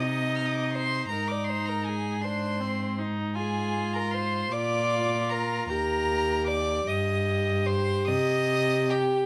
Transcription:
0.00 1.07 C3 medium
0.00 1.11 D#4 medium
0.00 0.76 D#5 loud
0.00 0.38 D#6 loud
0.36 0.48 F6 medium
0.46 0.57 D#6 medium
0.55 0.64 D6 medium
0.63 0.72 D#6 medium
0.71 1.08 C6 loud
0.75 1.12 C5 medium
1.09 4.48 G#2 medium
1.09 2.21 D#4 medium
1.09 1.33 A#4 medium
1.09 1.29 A#5 loud
1.28 1.50 D5 medium
1.28 1.46 D6 loud
1.44 1.67 C6 loud
1.49 1.70 C5 medium
1.66 1.89 A#4 medium
1.66 1.87 A#5 loud
1.85 2.26 G#4 medium
1.85 2.23 G#5 loud
2.22 2.62 D4 medium
2.22 2.98 C5 medium
2.22 2.97 C6 loud
2.61 3.00 C4 medium
2.98 3.37 D#4 medium
3.35 4.51 F4 medium
3.35 3.96 G#4 loud
3.35 3.95 G#5 loud
3.93 4.15 A#4 medium
3.93 4.13 A#5 loud
4.11 4.54 C5 loud
4.11 4.53 C6 loud
4.51 5.68 A#2 medium
4.51 5.71 F4 medium
4.51 5.32 D5 loud
4.51 5.31 D6 loud
5.29 5.69 A#4 loud
5.29 5.68 A#5 loud
5.68 6.85 D#2 medium
5.68 6.87 G4 medium
5.68 6.49 A#4 loud
5.68 6.46 A#5 loud
6.48 6.89 D5 loud
6.48 6.90 D6 loud
6.87 8.09 G2 medium
6.87 9.26 G4 medium
6.87 7.67 D#5 medium
6.87 7.68 D#6 loud
7.66 8.08 C5 loud
7.66 8.07 C6 loud
8.07 9.26 C3 medium
8.07 8.92 D#5 loud
8.07 8.91 D#6 loud
8.90 9.26 G4 medium
8.90 9.26 G5 loud

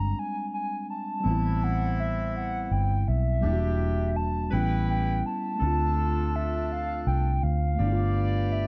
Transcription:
0.00 0.13 G1 medium
0.00 1.18 G3 medium
0.00 1.20 G#3 medium
0.00 1.22 C4 medium
0.00 1.24 D4 medium
0.00 0.21 A#5 medium
0.19 0.53 G#5 loud
0.54 0.87 G#5 medium
0.90 1.65 A5 medium
1.20 3.37 G3 medium
1.20 3.38 B3 medium
1.24 2.67 A1 loud
1.24 3.03 E3 medium
1.24 3.03 C4 medium
1.24 3.40 C4 medium
1.24 3.03 E4 medium
1.31 3.42 E4 medium
1.64 1.99 F#5 loud
2.00 2.33 E5 medium
2.36 2.66 F#5 loud
2.66 2.73 F#5 medium
2.71 3.04 G1 medium
2.71 3.07 G5 medium
3.08 3.46 B1 medium
3.08 4.18 E5 loud
3.41 4.49 E1 loud
3.41 4.49 G3 medium
3.41 4.52 A#3 medium
3.41 4.14 D4 medium
3.41 4.53 D4 medium
3.41 4.14 E4 medium
3.41 4.14 G4 medium
3.46 3.51 E4 medium
3.53 4.57 F#4 medium
4.16 4.52 A5 medium
4.50 5.21 A1 loud
4.50 5.60 G3 medium
4.50 5.61 B3 medium
4.50 5.62 C#4 medium
4.50 5.23 E4 medium
4.50 5.23 G4 medium
4.50 5.23 B4 medium
4.50 4.87 G5 loud
4.56 5.63 E4 medium
4.90 5.23 G5 medium
5.26 6.37 A5 loud
5.56 7.73 A3 medium
5.56 7.74 C4 medium
5.60 7.03 D2 loud
5.60 7.39 D4 medium
5.60 7.76 D4 medium
5.60 7.39 F4 medium
5.60 7.39 A4 medium
5.67 7.78 F4 medium
6.36 6.71 E5 loud
6.72 7.05 F5 loud
7.07 7.39 C2 medium
7.07 7.45 G5 medium
7.43 7.76 D2 medium
7.43 8.54 F5 loud
7.75 8.67 A3 medium
7.75 8.67 B3 medium
7.75 8.67 G4 medium
7.75 8.67 B4 medium
7.75 8.67 D5 medium
7.80 8.67 G1 loud
7.80 8.67 D4 medium
7.86 7.89 E4 medium
7.92 8.67 F4 medium
8.52 8.67 E5 loud

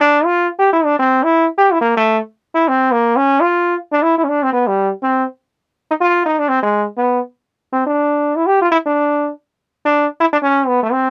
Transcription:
0.01 0.26 D4 loud
0.25 0.48 F4 loud
0.59 0.71 G4 loud
0.73 0.86 E4 loud
0.85 0.97 D4 loud
0.99 1.25 C4 loud
1.23 1.46 E4 loud
1.58 1.74 G4 loud
1.72 1.80 E4 loud
1.81 1.94 A#3 medium
1.97 2.18 A3 medium
2.55 2.70 E4 loud
2.68 2.93 C4 medium
2.91 3.18 A#3 medium
3.16 3.42 C#4 loud
3.41 3.75 F4 loud
3.92 4.04 D4 medium
4.02 4.16 E4 medium
4.18 4.25 E4 medium
4.24 4.30 C#4 medium
4.28 4.45 D4 medium
4.43 4.51 C4 medium
4.53 4.69 B3 medium
4.67 4.90 G3 medium
5.03 5.24 C4 medium
5.91 5.94 D#4 medium
6.01 6.22 F4 loud
6.25 6.41 D#4 medium
6.39 6.50 D4 medium
6.48 6.62 C4 medium
6.63 6.85 G#3 medium
6.97 7.20 B3 medium
7.72 7.85 C4 medium
7.86 8.37 D4 medium
8.36 8.48 E4 medium
8.46 8.60 G4 loud
8.62 8.69 F4 medium
8.71 8.77 E4 loud
8.86 9.30 D4 medium
9.85 10.06 D4 medium
10.20 10.26 E4 medium
10.33 10.36 D4 medium
10.42 10.69 C#4 medium
10.67 10.81 B3 medium
10.83 10.94 A3 medium
10.92 11.10 C4 medium

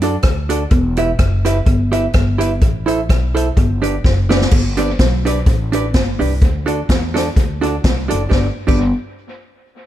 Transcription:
0.00 0.16 F#2 medium
0.00 0.14 D4 medium
0.00 0.15 F#4 medium
0.00 0.15 A4 loud
0.00 0.15 D5 loud
0.00 closed hi-hat medium
0.22 0.64 D2 medium
0.22 kick loud
0.22 cross-stick loud
0.22 closed hi-hat medium
0.49 0.62 D4 medium
0.49 0.62 F#4 medium
0.49 0.62 A4 medium
0.49 0.63 D5 medium
0.49 closed hi-hat loud
0.71 1.12 E1 loud
0.71 kick loud
0.71 closed hi-hat medium
0.97 1.10 E4 medium
0.97 1.10 G4 medium
0.97 1.10 B4 medium
0.97 1.10 E5 loud
0.97 closed hi-hat medium
1.19 1.59 F#1 loud
1.19 kick loud
1.19 cross-stick loud
1.19 closed hi-hat medium
1.45 1.57 E4 medium
1.45 1.57 G4 medium
1.45 1.58 B4 loud
1.45 1.58 E5 medium
1.45 cross-stick medium
1.45 closed hi-hat loud
1.66 2.07 G1 medium
1.66 muted hollow-body jazz guitar stroke soft
1.66 kick loud
1.66 closed hi-hat medium
1.92 2.04 E4 medium
1.92 2.04 G4 medium
1.92 2.05 B4 medium
1.92 2.05 E5 loud
1.92 closed hi-hat medium
2.13 2.62 G1 loud
2.13 kick loud
2.13 cross-stick loud
2.13 closed hi-hat medium
2.38 2.51 E4 medium
2.38 2.52 G4 medium
2.38 2.52 B4 medium
2.38 2.52 E5 medium
2.38 closed hi-hat loud
2.61 3.10 A1 loud
2.61 kick loud
2.61 closed hi-hat medium
2.86 2.99 E4 medium
2.86 2.99 A4 medium
2.86 3.00 C5 medium
2.86 3.00 E5 loud
2.86 closed hi-hat medium
3.09 3.50 B1 medium
3.09 kick loud
3.09 cross-stick loud
3.09 closed hi-hat medium
3.35 3.47 E4 medium
3.35 3.47 A4 medium
3.35 3.48 C5 medium
3.35 3.48 E5 medium
3.35 closed hi-hat medium
3.57 3.97 G1 loud
3.57 muted hollow-body jazz guitar stroke soft
3.57 kick loud
3.57 closed hi-hat medium
3.82 3.94 D4 medium
3.82 3.95 G4 medium
3.82 3.95 B4 medium
3.82 3.95 D5 loud
3.82 closed hi-hat medium
4.04 4.45 F#1 loud
4.04 kick loud
4.04 snare medium
4.29 4.42 D4 medium
4.29 4.42 G4 medium
4.29 4.42 B4 loud
4.29 4.42 D5 loud
4.29 snare medium
4.41 snare medium
4.51 4.92 G1 loud
4.51 kick loud
4.51 crash loud
4.77 4.90 D4 medium
4.77 4.90 G4 medium
4.77 4.90 B4 loud
4.77 4.90 D5 loud
4.77 closed hi-hat medium
4.99 5.39 B1 loud
4.99 kick loud
4.99 snare loud
4.99 closed hi-hat medium
5.25 5.37 D4 medium
5.25 5.38 G4 medium
5.25 5.38 B4 loud
5.25 5.38 D5 loud
5.25 closed hi-hat loud
5.46 5.94 A1 loud
5.46 kick loud
5.46 closed hi-hat medium
5.72 5.85 D4 medium
5.72 5.85 G4 medium
5.72 5.86 B4 medium
5.72 5.86 D5 medium
5.72 closed hi-hat medium
5.94 6.16 G1 medium
5.94 kick loud
5.94 snare loud
5.94 closed hi-hat medium
6.19 6.38 C2 medium
6.19 6.32 D4 medium
6.19 6.32 G4 medium
6.19 6.32 B4 medium
6.19 6.33 D5 medium
6.19 open hi-hat medium
6.41 6.82 D2 loud
6.41 kick loud
6.41 closed hi-hat medium
6.66 6.79 D4 medium
6.66 6.79 F#4 medium
6.66 6.79 A4 medium
6.66 6.80 D5 medium
6.66 closed hi-hat medium
6.89 7.30 E2 medium
6.89 kick loud
6.89 snare loud
6.89 closed hi-hat medium
7.14 7.27 D4 medium
7.14 7.27 F#4 medium
7.14 7.27 A4 medium
7.14 7.27 D5 medium
7.14 snare medium
7.14 closed hi-hat loud
7.36 7.77 D2 medium
7.36 kick loud
7.36 closed hi-hat medium
7.61 7.74 D4 medium
7.61 7.74 F#4 loud
7.61 7.75 A4 loud
7.61 7.75 D5 medium
7.61 closed hi-hat medium
7.84 8.06 C2 medium
7.84 kick loud
7.84 snare loud
7.84 closed hi-hat medium
8.08 8.29 F#1 medium
8.08 8.21 D4 medium
8.08 8.22 F#4 medium
8.08 8.22 A4 medium
8.08 8.22 D5 medium
8.08 closed hi-hat loud
8.29 8.46 G1 medium
8.29 8.46 D4 medium
8.29 8.46 G4 medium
8.29 8.47 B4 medium
8.29 8.47 D5 medium
8.29 kick loud
8.29 snare medium
8.67 8.90 G1 loud
8.67 8.81 D4 medium
8.67 8.81 G4 medium
8.67 8.81 B4 medium
8.67 8.81 D5 medium
8.67 kick loud
8.67 crash medium

